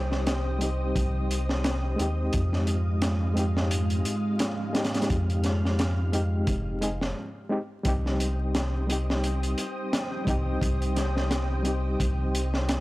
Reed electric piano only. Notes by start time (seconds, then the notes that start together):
Already playing: G3 C4 D#4 G4
0.59 G3 C4 D#4
0.64 G4
1.96 G#3 C4 D#4
2.02 G4
3.34 G#3 C4 D#4
3.39 G4
4.73 G#3 C4 D#4
4.78 G4
6.12 G#3 C4 D#4 G4
6.81 G#3 C4 D#4 G#4
7.49 G#3 C4 D#4 G4
7.83 G3 C4 D#4
7.88 G4
8.87 G3 C4 D#4
8.92 G4
10.25 G3 C4 D#4
10.30 G4
11.63 G3 C4 D#4
11.67 G4